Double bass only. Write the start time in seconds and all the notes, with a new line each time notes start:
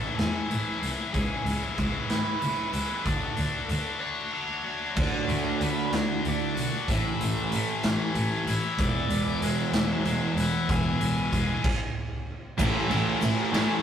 0.18 E2
0.50 A2
0.82 C2
1.14 C#2
1.45 C#2
1.78 C#2
2.09 G#1
2.42 C#3
2.73 C#2
3.06 D2
3.38 D2
3.69 D2
4.96 D2
5.28 D2
5.60 D2
5.92 D2
6.25 D2
6.56 B1
6.89 A1
7.21 A1
7.52 A1
7.84 A1
8.16 A1
8.47 A1
8.78 E1
9.09 E1
9.42 E1
9.73 E1
10.05 E1
10.36 E1
10.70 E1
11.00 E1
11.33 E1
12.59 A1
12.91 A1
13.22 A1
13.54 A1